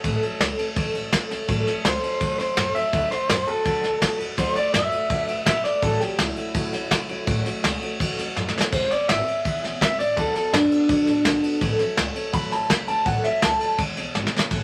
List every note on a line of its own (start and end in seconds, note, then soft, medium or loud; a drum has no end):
0.04 0.17 A1 loud
0.04 0.22 A2 medium
0.04 0.22 E3 medium
0.04 0.23 F#3 medium
0.04 0.23 A3 loud
0.04 0.22 C#4 loud
0.04 0.21 A4 loud
0.04 kick loud
0.04 ride medium
0.22 0.38 F#3 medium
0.22 0.39 A3 medium
0.22 0.41 C#4 medium
0.22 0.40 A4 medium
0.22 muted upright bass stroke medium
0.22 ride medium
0.39 0.54 C#2 medium
0.39 0.58 F#3 medium
0.39 0.59 A3 medium
0.39 0.58 C#4 medium
0.39 0.56 A4 medium
0.39 snare loud
0.39 ride medium
0.58 0.76 F#3 medium
0.58 0.76 A3 medium
0.58 0.77 C#4 medium
0.58 0.76 A4 medium
0.58 muted upright bass stroke medium
0.58 ride medium
0.76 0.90 A1 loud
0.76 0.94 A2 medium
0.76 0.95 E3 loud
0.76 0.95 F#3 medium
0.76 0.95 A3 medium
0.76 0.94 C#4 loud
0.76 0.92 A4 loud
0.76 kick loud
0.76 ride medium
0.93 1.08 A1 medium
0.93 1.10 F#3 soft
0.93 1.11 A3 medium
0.93 1.13 C#4 medium
0.93 1.12 A4 medium
0.93 ride medium
1.11 1.26 C#2 medium
1.11 1.30 F#3 medium
1.11 1.30 A3 medium
1.11 1.29 C#4 medium
1.11 1.28 A4 medium
1.11 kick medium
1.11 snare loud
1.11 ride medium
1.29 1.44 D2 medium
1.29 1.48 F#3 medium
1.29 1.48 A3 medium
1.29 1.48 C#4 medium
1.29 1.48 A4 medium
1.29 snare soft
1.29 ride medium
1.48 1.62 A1 medium
1.48 1.66 A2 loud
1.48 1.67 E3 medium
1.48 1.67 F#3 loud
1.48 1.67 A3 loud
1.48 1.66 C#4 loud
1.48 1.65 A4 loud
1.48 kick loud
1.48 ride medium
1.66 1.83 F#3 soft
1.66 1.84 A3 medium
1.66 1.85 C#4 medium
1.66 1.84 A4 medium
1.66 muted upright bass stroke medium
1.66 snare soft
1.66 ride medium
1.84 1.98 C#2 medium
1.84 2.03 F#3 medium
1.84 2.03 A3 medium
1.84 2.02 C#4 medium
1.84 2.00 A4 medium
1.84 2.37 C5 loud
1.84 snare loud
1.84 ride medium
2.02 2.20 F#3 soft
2.02 2.20 A3 medium
2.02 2.20 C#4 medium
2.02 2.20 A4 medium
2.02 muted upright bass stroke medium
2.02 ride medium
2.20 2.34 C#2 medium
2.20 2.39 A2 medium
2.20 2.39 E3 medium
2.20 2.39 F#3 medium
2.20 2.39 A3 medium
2.20 2.38 C#4 medium
2.20 2.37 A4 medium
2.20 kick loud
2.20 ride medium
2.38 2.52 E2 medium
2.38 2.55 F#3 soft
2.38 2.56 A3 soft
2.38 2.57 C#4 medium
2.38 2.57 A4 medium
2.38 2.74 C5 medium
2.38 snare soft
2.38 ride medium
2.56 2.70 F#2 medium
2.56 2.75 F#3 medium
2.56 2.75 A3 medium
2.56 2.74 C#4 medium
2.56 2.73 A4 medium
2.56 snare loud
2.56 ride medium
2.74 2.92 F#3 soft
2.74 2.93 A3 medium
2.74 2.93 C#4 medium
2.74 2.93 A4 medium
2.74 3.10 E5 loud
2.74 muted upright bass stroke medium
2.74 ride medium
2.93 3.06 D2 medium
2.93 3.11 D3 medium
2.93 3.12 F#3 medium
2.93 3.12 A3 medium
2.93 3.11 F#4 medium
2.93 3.09 B4 medium
2.93 kick loud
2.93 ride medium
3.10 3.28 A3 soft
3.10 3.29 F#4 soft
3.10 3.29 B4 medium
3.10 3.29 C5 medium
3.10 muted upright bass stroke medium
3.10 snare soft
3.10 ride medium
3.28 3.43 F#2 medium
3.28 3.47 F#3 medium
3.28 3.48 A3 medium
3.28 3.47 F#4 medium
3.28 3.45 B4 medium
3.28 3.47 C5 medium
3.28 snare loud
3.28 ride medium
3.46 3.65 A3 soft
3.46 3.65 F#4 medium
3.46 4.18 A4 loud
3.46 3.65 B4 medium
3.46 muted upright bass stroke medium
3.46 ride medium
3.65 3.79 D2 medium
3.65 3.83 D3 medium
3.65 3.84 F#3 medium
3.65 3.84 A3 medium
3.65 3.83 F#4 medium
3.65 3.81 B4 medium
3.65 kick loud
3.65 ride medium
3.82 3.97 D2 medium
3.82 4.00 A3 soft
3.82 4.01 F#4 soft
3.82 4.01 B4 soft
3.82 snare soft
3.82 ride medium
4.00 4.15 F#2 medium
4.00 4.19 F#3 medium
4.00 4.20 A3 medium
4.00 4.19 F#4 medium
4.00 4.17 B4 medium
4.00 kick medium
4.00 snare loud
4.00 ride medium
4.18 4.33 F#2 medium
4.18 4.36 A3 soft
4.18 4.37 F#4 medium
4.18 4.37 B4 medium
4.18 ride medium
4.36 4.51 D2 loud
4.36 4.55 D3 medium
4.36 4.56 F#3 medium
4.36 4.56 A3 loud
4.36 4.56 F#4 medium
4.36 4.54 B4 loud
4.36 4.56 C5 loud
4.36 kick loud
4.36 snare soft
4.36 ride medium
4.55 4.73 A3 medium
4.55 4.74 F#4 medium
4.55 4.74 B4 medium
4.55 4.73 D5 medium
4.55 muted upright bass stroke medium
4.55 ride medium
4.73 4.87 F#2 medium
4.73 4.92 F#3 medium
4.73 4.92 F#4 medium
4.73 4.91 B4 medium
4.73 5.44 E5 loud
4.73 snare loud
4.73 ride medium
4.92 5.10 A3 medium
4.92 5.11 F#4 medium
4.92 5.10 B4 medium
4.92 muted upright bass stroke medium
4.92 ride medium
5.10 5.23 F#2 medium
5.10 5.28 D3 medium
5.10 5.29 F#3 medium
5.10 5.29 A3 medium
5.10 5.28 F#4 medium
5.10 5.26 B4 medium
5.10 kick loud
5.10 ride medium
5.28 5.41 A2 medium
5.28 5.46 A3 soft
5.28 5.47 F#4 medium
5.28 5.46 B4 medium
5.28 ride medium
5.46 5.60 B2 medium
5.46 5.64 F#3 medium
5.46 5.65 A3 medium
5.46 5.64 F#4 medium
5.46 5.63 B4 medium
5.46 5.64 E5 loud
5.46 kick medium
5.46 snare loud
5.46 ride medium
5.64 5.82 A3 medium
5.64 5.83 F#4 soft
5.64 5.82 B4 medium
5.64 5.82 D5 loud
5.64 muted upright bass stroke medium
5.64 snare soft
5.64 ride medium
5.82 5.96 A1 loud
5.82 6.01 A2 medium
5.82 6.01 E3 medium
5.82 6.01 F#3 loud
5.82 6.01 A3 medium
5.82 6.00 C#4 medium
5.82 5.99 F#4 medium
5.82 6.00 A4 loud
5.82 kick loud
5.82 ride medium
6.00 6.17 F#3 soft
6.00 6.18 A3 soft
6.00 6.19 C#4 medium
6.00 6.19 F#4 medium
6.00 6.19 G4 loud
6.00 muted upright bass stroke medium
6.00 snare soft
6.00 ride medium
6.18 6.32 C#2 medium
6.18 6.37 F#3 medium
6.18 6.37 A3 medium
6.18 6.36 C#4 medium
6.18 7.24 E4 loud
6.18 6.35 F#4 medium
6.18 snare loud
6.18 ride medium
6.36 6.54 F#3 soft
6.36 6.55 A3 medium
6.36 6.55 C#4 medium
6.36 6.55 F#4 medium
6.36 muted upright bass stroke medium
6.36 ride medium
6.54 6.68 A1 loud
6.54 6.73 A2 medium
6.54 6.73 E3 medium
6.54 6.73 F#3 medium
6.54 6.74 A3 medium
6.54 6.72 C#4 medium
6.54 6.71 F#4 loud
6.54 kick loud
6.54 ride medium
6.72 6.86 A1 medium
6.72 6.89 F#3 soft
6.72 6.91 A3 soft
6.72 6.91 C#4 medium
6.72 6.91 F#4 medium
6.72 snare soft
6.72 ride medium
6.90 7.04 C#2 medium
6.90 7.09 F#3 medium
6.90 7.10 A3 medium
6.90 7.09 C#4 medium
6.90 7.08 F#4 medium
6.90 kick medium
6.90 snare loud
6.90 ride medium
7.09 7.23 D2 medium
7.09 7.26 F#3 medium
7.09 7.27 A3 medium
7.09 7.27 C#4 medium
7.09 7.27 F#4 medium
7.09 ride medium
7.27 7.41 A1 loud
7.27 7.45 A2 medium
7.27 7.45 E3 medium
7.27 7.46 F#3 loud
7.27 7.46 A3 loud
7.27 7.44 C#4 loud
7.27 7.43 F#4 loud
7.27 kick loud
7.27 ride medium
7.45 7.62 F#3 medium
7.45 7.63 A3 medium
7.45 7.64 C#4 medium
7.45 7.63 F#4 medium
7.45 muted upright bass stroke medium
7.45 snare soft
7.45 ride medium
7.63 7.77 C#2 loud
7.63 7.81 F#3 medium
7.63 7.82 A3 medium
7.63 7.81 C#4 medium
7.63 7.80 F#4 medium
7.63 snare loud
7.63 ride loud
7.81 7.99 F#3 medium
7.81 8.00 A3 medium
7.81 8.00 C#4 medium
7.81 8.00 F#4 medium
7.81 muted upright bass stroke medium
7.81 ride medium
7.99 8.13 C#2 medium
7.99 8.18 A2 medium
7.99 8.18 E3 loud
7.99 8.18 F#3 medium
7.99 8.18 A3 medium
7.99 8.17 C#4 medium
7.99 8.16 F#4 medium
7.99 kick loud
7.99 ride loud
8.17 8.31 E2 medium
8.17 8.35 F#3 medium
8.17 8.36 A3 soft
8.17 8.37 C#4 medium
8.17 8.36 F#4 medium
8.17 snare soft
8.17 ride medium
8.36 8.50 F#2 medium
8.36 8.54 F#3 medium
8.36 8.55 A3 medium
8.36 8.54 C#4 medium
8.36 8.53 F#4 medium
8.36 snare medium
8.48 snare medium
8.54 8.73 F#3 medium
8.54 8.73 A3 medium
8.54 8.73 C#4 medium
8.54 8.72 F#4 medium
8.54 muted upright bass stroke medium
8.61 snare loud
8.72 8.86 E1 loud
8.72 8.91 E3 medium
8.72 8.91 G#3 medium
8.72 8.91 B3 medium
8.72 8.91 C#4 medium
8.72 8.89 G#4 loud
8.72 8.90 C5 loud
8.72 kick loud
8.72 crash medium
8.72 ride medium
8.90 9.08 B3 soft
8.90 9.09 C#4 medium
8.90 9.09 G#4 medium
8.90 9.08 D5 medium
8.90 muted upright bass stroke medium
8.90 snare soft
8.90 ride medium
9.08 9.22 G#1 loud
9.08 9.26 G#3 medium
9.08 9.27 C#4 medium
9.08 9.25 G#4 medium
9.08 9.79 E5 medium
9.08 snare loud
9.08 ride medium
9.26 9.45 B3 soft
9.26 9.45 C#4 soft
9.26 9.45 G#4 medium
9.26 muted upright bass stroke medium
9.26 ride medium
9.45 9.58 E1 loud
9.45 9.63 E3 medium
9.45 9.63 G#3 medium
9.45 9.63 B3 medium
9.45 9.63 C#4 medium
9.45 9.61 G#4 medium
9.45 kick loud
9.45 ride medium
9.62 9.76 E1 medium
9.62 9.80 B3 medium
9.62 9.81 C#4 medium
9.62 9.81 G#4 medium
9.62 snare soft
9.62 ride medium
9.80 9.94 G#1 medium
9.80 9.99 G#3 medium
9.80 9.99 B3 medium
9.80 9.98 C#4 medium
9.80 9.97 G#4 medium
9.80 9.99 E5 medium
9.80 kick medium
9.80 snare loud
9.80 ride medium
9.98 10.12 A1 medium
9.98 10.16 B3 soft
9.98 10.17 C#4 medium
9.98 10.16 G#4 medium
9.98 10.17 D5 medium
9.98 snare soft
9.98 ride medium
10.16 10.30 D2 loud
10.16 10.35 D3 medium
10.16 10.35 F#3 medium
10.16 10.35 B3 medium
10.16 10.35 F#4 medium
10.16 10.34 A4 loud
10.16 10.33 A4 medium
10.16 kick loud
10.16 ride medium
10.34 10.52 B3 soft
10.34 10.53 F#4 medium
10.34 10.53 A4 medium
10.34 muted upright bass stroke medium
10.34 snare soft
10.34 ride medium
10.52 10.66 F#2 medium
10.52 10.71 F#3 medium
10.52 10.71 B3 medium
10.52 11.58 D4 loud
10.52 10.71 F#4 medium
10.52 10.69 A4 medium
10.52 snare loud
10.52 ride medium
10.70 10.88 B3 medium
10.70 10.89 F#4 medium
10.70 10.89 A4 medium
10.70 muted upright bass stroke medium
10.70 ride medium
10.88 11.02 F#2 medium
10.88 11.07 D3 medium
10.88 11.07 F#3 medium
10.88 11.08 B3 medium
10.88 11.06 F#4 medium
10.88 11.05 A4 medium
10.88 kick loud
10.88 ride medium
11.06 11.20 A2 medium
11.06 11.25 B3 soft
11.06 11.26 F#4 medium
11.06 11.25 A4 medium
11.06 snare soft
11.06 ride medium
11.25 11.38 B1 medium
11.25 11.43 F#3 medium
11.25 11.44 B3 medium
11.25 11.43 F#4 medium
11.25 11.41 A4 medium
11.25 kick medium
11.25 snare loud
11.25 ride medium
11.43 11.62 B3 medium
11.43 11.62 F#4 medium
11.43 11.61 A4 medium
11.43 muted upright bass stroke medium
11.43 ride medium
11.61 11.75 A1 loud
11.61 11.79 A2 medium
11.61 11.80 E3 medium
11.61 11.80 F#3 medium
11.61 11.80 A3 loud
11.61 11.79 C#4 loud
11.61 11.78 A4 loud
11.61 kick loud
11.61 ride medium
11.79 11.96 F#3 medium
11.79 11.97 A3 medium
11.79 11.98 C#4 medium
11.79 11.97 A4 medium
11.79 muted upright bass stroke medium
11.79 snare soft
11.79 ride medium
11.97 12.11 C#2 loud
11.97 12.15 F#3 medium
11.97 12.15 A3 medium
11.97 12.14 C#4 medium
11.97 12.13 A4 medium
11.97 snare loud
11.97 ride medium
12.15 12.33 F#3 medium
12.15 12.33 A3 medium
12.15 12.33 C#4 medium
12.15 12.33 A4 medium
12.15 muted upright bass stroke medium
12.15 ride medium
12.33 12.47 A1 loud
12.33 12.51 A2 medium
12.33 12.52 E3 medium
12.33 12.52 F#3 medium
12.33 12.52 A3 medium
12.33 12.51 C#4 medium
12.33 12.50 A4 medium
12.33 12.52 B5 loud
12.33 kick loud
12.33 ride medium
12.51 12.65 A1 medium
12.51 12.68 F#3 soft
12.51 12.69 A3 medium
12.51 12.70 C#4 soft
12.51 12.70 A4 medium
12.51 12.70 A5 loud
12.51 snare soft
12.51 ride medium
12.69 12.83 C#2 medium
12.69 12.88 F#3 medium
12.69 12.88 A3 medium
12.69 12.87 C#4 medium
12.69 12.86 A4 medium
12.69 12.88 B5 loud
12.69 kick medium
12.69 snare loud
12.69 ride medium
12.87 13.02 D2 loud
12.87 13.05 F#3 soft
12.87 13.06 A3 soft
12.87 13.06 C#4 soft
12.87 13.06 A4 medium
12.87 13.06 A5 loud
12.87 ride medium
13.06 13.19 A1 medium
13.06 13.24 A2 medium
13.06 13.24 E3 medium
13.06 13.24 F#3 medium
13.06 13.24 A3 medium
13.06 13.23 C#4 medium
13.06 13.22 A4 loud
13.06 13.24 F#5 loud
13.06 kick loud
13.06 ride medium
13.23 13.41 F#3 soft
13.23 13.42 A3 medium
13.23 13.42 C#4 medium
13.23 13.42 A4 medium
13.23 13.42 E5 medium
13.23 muted upright bass stroke medium
13.23 snare soft
13.23 ride medium
13.42 13.56 C#2 medium
13.42 13.60 F#3 medium
13.42 13.61 A3 medium
13.42 13.60 C#4 medium
13.42 13.59 A4 medium
13.42 13.77 A5 loud
13.42 snare loud
13.42 ride medium
13.60 13.78 F#3 medium
13.60 13.79 A3 medium
13.60 13.78 C#4 medium
13.60 13.78 A4 medium
13.60 muted upright bass stroke medium
13.60 ride medium
13.78 13.92 E1 loud
13.78 13.96 E3 medium
13.78 13.97 G#3 medium
13.78 13.97 B3 medium
13.78 13.96 C#4 loud
13.78 13.95 G#4 medium
13.78 kick loud
13.78 ride medium
13.96 14.10 B1 loud
13.96 14.14 B3 soft
13.96 14.15 C#4 medium
13.96 14.14 G#4 medium
13.96 snare soft
13.96 ride medium
14.14 14.28 G#1 medium
14.14 14.32 G#3 medium
14.14 14.33 B3 medium
14.14 14.32 C#4 medium
14.14 14.31 G#4 medium
14.14 snare medium
14.27 snare medium
14.32 14.51 B3 medium
14.32 14.51 C#4 medium
14.32 14.50 G#4 medium
14.32 muted upright bass stroke medium
14.39 snare loud
14.50 14.63 A1 loud
14.50 14.63 A2 medium
14.50 14.63 E3 loud
14.50 14.63 F#3 medium
14.50 14.63 A3 medium
14.50 14.63 C#4 loud
14.50 14.63 A4 loud
14.50 kick loud
14.50 snare soft
14.50 crash medium